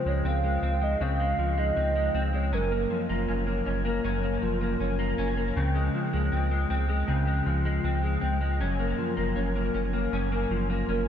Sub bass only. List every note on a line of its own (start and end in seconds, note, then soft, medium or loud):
0.06 0.22 C#2 medium
0.24 0.58 C#2 medium
0.62 0.96 C#2 medium
1.00 1.34 C#2 medium
1.38 1.72 C#2 medium
1.77 2.10 C#2 medium
2.14 2.54 C#2 medium
2.52 2.86 F#1 loud
3.09 3.26 F#1 medium
3.29 3.62 F#1 medium
3.67 4.00 F#1 loud
4.04 4.38 F#1 loud
4.42 4.76 F#1 medium
4.80 5.14 F#1 loud
5.18 5.52 F#1 medium
5.56 5.90 C#2 loud
6.14 6.30 C#2 medium
6.33 6.66 C#2 medium
6.70 7.04 C#2 medium
7.08 7.42 C#2 medium
7.46 7.80 C#2 medium
7.84 8.18 C#2 medium
8.22 8.62 C#2 medium
8.60 8.94 F#1 loud
9.17 9.34 F#1 medium
9.36 9.70 F#1 loud
9.74 10.08 F#1 loud
10.12 10.46 F#1 loud
10.50 10.84 F#1 medium
10.88 11.08 F#1 medium